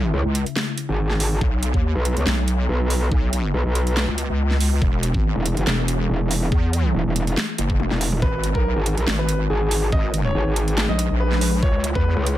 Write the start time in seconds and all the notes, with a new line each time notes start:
Already playing: C#2 C#3 G#3 E4
0.14 C#2
0.25 C#2
0.35 closed hi-hat
0.46 closed hi-hat
0.56 snare
0.78 closed hi-hat
0.89 G#1
1.10 snare
1.20 open hi-hat
1.41 B1 B3 F#4 D#5, kick
1.63 closed hi-hat
1.74 D#2, kick
1.95 B1
2.05 closed hi-hat
2.17 C#2, closed hi-hat
2.26 B1, snare
2.48 closed hi-hat
2.69 B1
2.90 open hi-hat
3.12 B1, kick
3.33 closed hi-hat
3.54 B1
3.66 B1
3.75 closed hi-hat
3.87 closed hi-hat
3.97 snare
4.08 C#2
4.18 closed hi-hat
4.29 C#2
4.51 snare
4.60 open hi-hat
4.82 E1 E3 B3 G#4, kick
5.03 closed hi-hat
5.14 G#1, kick
5.36 E1
5.46 closed hi-hat
5.57 F#1, closed hi-hat
5.67 E1, snare
5.88 closed hi-hat
6.09 E1
6.31 open hi-hat
6.52 E2, kick
6.73 closed hi-hat
6.95 E1
7.06 E1
7.16 closed hi-hat
7.27 closed hi-hat
7.37 snare
7.58 F#1, closed hi-hat
7.70 kick
7.80 E1, high tom
7.91 E1, snare, high tom
8.01 open hi-hat
8.12 mid tom
8.22 G#1 G#3 D#4 B4, kick
8.44 closed hi-hat
8.55 B1 A#4, kick
8.76 G#1
8.86 closed hi-hat
8.97 A#1, closed hi-hat
9.07 G#1, snare
9.19 B4
9.29 closed hi-hat
9.50 G#1 G#4
9.71 open hi-hat
9.92 G#1 D#5, kick
10.14 closed hi-hat
10.25 C#5
10.35 G#1
10.46 G#1
10.56 closed hi-hat
10.68 closed hi-hat
10.78 snare
10.89 A#1 D#5
10.99 closed hi-hat
11.10 A#1
11.20 B4
11.32 snare
11.41 open hi-hat
11.63 C#2 C#3 E4 C#5, kick
11.84 closed hi-hat
11.95 E2 B4, kick
12.17 C#2
12.26 closed hi-hat